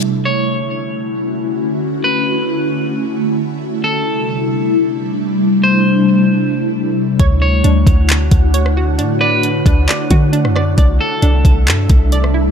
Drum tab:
HH |----------------|----------------|----------------|----------------|
CP |----------------|----------------|----------------|----------------|
SD |----------------|----------------|----------------|----------------|
BD |----------------|----------------|----------------|----------------|

HH |x---x-x-x-x-x---|x---x-x-x-x-x---|x---x-x-x-x-x---|
CP |--------x-------|--------x-------|--------x-------|
SD |-------------r--|-------------rr-|-------------r--|
BD |o-----o---o-----|------o---o-----|o-----o---o-----|